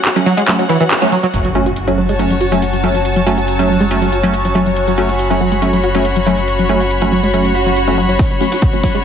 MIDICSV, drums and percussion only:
0, 0, Header, 1, 2, 480
1, 0, Start_track
1, 0, Key_signature, 3, "minor"
1, 0, Tempo, 428571
1, 1497, Time_signature, 4, 2, 24, 8
1, 10130, End_track
2, 0, Start_track
2, 0, Title_t, "Drums"
2, 57, Note_on_c, 9, 39, 127
2, 57, Note_on_c, 9, 42, 85
2, 169, Note_off_c, 9, 39, 0
2, 169, Note_off_c, 9, 42, 0
2, 183, Note_on_c, 9, 42, 57
2, 295, Note_off_c, 9, 42, 0
2, 297, Note_on_c, 9, 46, 88
2, 409, Note_off_c, 9, 46, 0
2, 422, Note_on_c, 9, 42, 51
2, 534, Note_off_c, 9, 42, 0
2, 537, Note_on_c, 9, 39, 127
2, 537, Note_on_c, 9, 42, 83
2, 649, Note_off_c, 9, 39, 0
2, 649, Note_off_c, 9, 42, 0
2, 663, Note_on_c, 9, 42, 55
2, 775, Note_off_c, 9, 42, 0
2, 777, Note_on_c, 9, 46, 104
2, 889, Note_off_c, 9, 46, 0
2, 902, Note_on_c, 9, 42, 52
2, 1014, Note_off_c, 9, 42, 0
2, 1017, Note_on_c, 9, 39, 127
2, 1017, Note_on_c, 9, 42, 87
2, 1129, Note_off_c, 9, 39, 0
2, 1129, Note_off_c, 9, 42, 0
2, 1142, Note_on_c, 9, 42, 57
2, 1254, Note_off_c, 9, 42, 0
2, 1258, Note_on_c, 9, 46, 94
2, 1370, Note_off_c, 9, 46, 0
2, 1382, Note_on_c, 9, 42, 54
2, 1494, Note_off_c, 9, 42, 0
2, 1497, Note_on_c, 9, 42, 73
2, 1609, Note_off_c, 9, 42, 0
2, 1621, Note_on_c, 9, 42, 52
2, 1733, Note_off_c, 9, 42, 0
2, 1861, Note_on_c, 9, 42, 55
2, 1973, Note_off_c, 9, 42, 0
2, 1976, Note_on_c, 9, 42, 81
2, 2088, Note_off_c, 9, 42, 0
2, 2102, Note_on_c, 9, 42, 53
2, 2214, Note_off_c, 9, 42, 0
2, 2343, Note_on_c, 9, 42, 51
2, 2455, Note_off_c, 9, 42, 0
2, 2457, Note_on_c, 9, 42, 78
2, 2569, Note_off_c, 9, 42, 0
2, 2581, Note_on_c, 9, 42, 53
2, 2693, Note_off_c, 9, 42, 0
2, 2696, Note_on_c, 9, 42, 61
2, 2808, Note_off_c, 9, 42, 0
2, 2821, Note_on_c, 9, 42, 49
2, 2933, Note_off_c, 9, 42, 0
2, 2937, Note_on_c, 9, 42, 80
2, 3049, Note_off_c, 9, 42, 0
2, 3063, Note_on_c, 9, 42, 52
2, 3175, Note_off_c, 9, 42, 0
2, 3302, Note_on_c, 9, 42, 52
2, 3414, Note_off_c, 9, 42, 0
2, 3417, Note_on_c, 9, 42, 79
2, 3529, Note_off_c, 9, 42, 0
2, 3543, Note_on_c, 9, 42, 51
2, 3655, Note_off_c, 9, 42, 0
2, 3783, Note_on_c, 9, 42, 55
2, 3895, Note_off_c, 9, 42, 0
2, 3898, Note_on_c, 9, 42, 87
2, 4010, Note_off_c, 9, 42, 0
2, 4023, Note_on_c, 9, 42, 53
2, 4135, Note_off_c, 9, 42, 0
2, 4263, Note_on_c, 9, 42, 49
2, 4375, Note_off_c, 9, 42, 0
2, 4377, Note_on_c, 9, 42, 81
2, 4489, Note_off_c, 9, 42, 0
2, 4503, Note_on_c, 9, 42, 54
2, 4615, Note_off_c, 9, 42, 0
2, 4618, Note_on_c, 9, 42, 63
2, 4730, Note_off_c, 9, 42, 0
2, 4743, Note_on_c, 9, 42, 51
2, 4855, Note_off_c, 9, 42, 0
2, 4857, Note_on_c, 9, 42, 83
2, 4969, Note_off_c, 9, 42, 0
2, 4983, Note_on_c, 9, 42, 52
2, 5095, Note_off_c, 9, 42, 0
2, 5222, Note_on_c, 9, 42, 51
2, 5334, Note_off_c, 9, 42, 0
2, 5337, Note_on_c, 9, 42, 76
2, 5449, Note_off_c, 9, 42, 0
2, 5462, Note_on_c, 9, 42, 52
2, 5574, Note_off_c, 9, 42, 0
2, 5702, Note_on_c, 9, 42, 52
2, 5814, Note_off_c, 9, 42, 0
2, 5816, Note_on_c, 9, 42, 79
2, 5928, Note_off_c, 9, 42, 0
2, 5942, Note_on_c, 9, 42, 51
2, 6054, Note_off_c, 9, 42, 0
2, 6181, Note_on_c, 9, 42, 50
2, 6293, Note_off_c, 9, 42, 0
2, 6296, Note_on_c, 9, 42, 79
2, 6408, Note_off_c, 9, 42, 0
2, 6421, Note_on_c, 9, 42, 54
2, 6533, Note_off_c, 9, 42, 0
2, 6536, Note_on_c, 9, 42, 62
2, 6648, Note_off_c, 9, 42, 0
2, 6661, Note_on_c, 9, 42, 51
2, 6773, Note_off_c, 9, 42, 0
2, 6776, Note_on_c, 9, 42, 83
2, 6888, Note_off_c, 9, 42, 0
2, 6901, Note_on_c, 9, 42, 52
2, 7013, Note_off_c, 9, 42, 0
2, 7141, Note_on_c, 9, 42, 51
2, 7253, Note_off_c, 9, 42, 0
2, 7256, Note_on_c, 9, 42, 69
2, 7368, Note_off_c, 9, 42, 0
2, 7382, Note_on_c, 9, 42, 46
2, 7494, Note_off_c, 9, 42, 0
2, 7622, Note_on_c, 9, 42, 52
2, 7734, Note_off_c, 9, 42, 0
2, 7735, Note_on_c, 9, 42, 78
2, 7847, Note_off_c, 9, 42, 0
2, 7860, Note_on_c, 9, 42, 52
2, 7972, Note_off_c, 9, 42, 0
2, 8101, Note_on_c, 9, 42, 47
2, 8213, Note_off_c, 9, 42, 0
2, 8217, Note_on_c, 9, 42, 77
2, 8329, Note_off_c, 9, 42, 0
2, 8342, Note_on_c, 9, 42, 50
2, 8454, Note_off_c, 9, 42, 0
2, 8457, Note_on_c, 9, 42, 57
2, 8569, Note_off_c, 9, 42, 0
2, 8583, Note_on_c, 9, 42, 47
2, 8695, Note_off_c, 9, 42, 0
2, 8697, Note_on_c, 9, 42, 76
2, 8809, Note_off_c, 9, 42, 0
2, 8823, Note_on_c, 9, 42, 47
2, 8935, Note_off_c, 9, 42, 0
2, 9062, Note_on_c, 9, 42, 49
2, 9174, Note_off_c, 9, 42, 0
2, 9176, Note_on_c, 9, 36, 122
2, 9177, Note_on_c, 9, 38, 47
2, 9177, Note_on_c, 9, 42, 77
2, 9288, Note_off_c, 9, 36, 0
2, 9289, Note_off_c, 9, 38, 0
2, 9289, Note_off_c, 9, 42, 0
2, 9303, Note_on_c, 9, 42, 53
2, 9415, Note_off_c, 9, 42, 0
2, 9416, Note_on_c, 9, 46, 101
2, 9528, Note_off_c, 9, 46, 0
2, 9542, Note_on_c, 9, 38, 45
2, 9542, Note_on_c, 9, 42, 52
2, 9654, Note_off_c, 9, 38, 0
2, 9654, Note_off_c, 9, 42, 0
2, 9655, Note_on_c, 9, 42, 86
2, 9656, Note_on_c, 9, 36, 109
2, 9767, Note_off_c, 9, 42, 0
2, 9768, Note_off_c, 9, 36, 0
2, 9781, Note_on_c, 9, 42, 54
2, 9893, Note_off_c, 9, 42, 0
2, 9895, Note_on_c, 9, 38, 49
2, 9895, Note_on_c, 9, 46, 91
2, 9896, Note_on_c, 9, 36, 62
2, 10007, Note_off_c, 9, 38, 0
2, 10007, Note_off_c, 9, 46, 0
2, 10008, Note_off_c, 9, 36, 0
2, 10021, Note_on_c, 9, 42, 52
2, 10130, Note_off_c, 9, 42, 0
2, 10130, End_track
0, 0, End_of_file